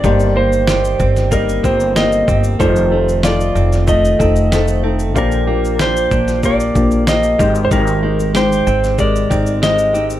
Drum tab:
SH |xx-xxxxxxxxxxxxx|xx-xxxxxxxxxxx-x|xx-xxxxxxxxxxxxx|xx-xxxxxxxxxxxxx|
SD |----o--o----o---|----o--o----o---|----o--o----o---|----o--o----o---|
BD |o-----o-o-o---o-|o-------o-o-----|o-----o-o-o---o-|o-------o-o-----|